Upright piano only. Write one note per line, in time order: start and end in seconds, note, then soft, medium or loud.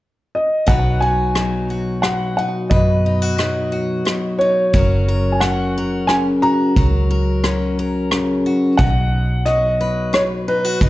0.35 0.69 D#5 medium
0.68 1.03 F#5 medium
1.00 1.65 G#5 medium
2.02 2.35 F#5 medium
2.37 2.45 F#5 medium
2.70 4.44 D#5 medium
4.39 5.36 C#5 medium
5.32 5.40 G#5 medium
5.40 6.10 F#5 medium
6.07 6.15 G#5 medium
6.42 8.41 A#5 medium
8.77 9.47 F#5 medium
9.46 10.15 D#5 medium
10.14 10.21 C#5 medium
10.48 10.89 B4 medium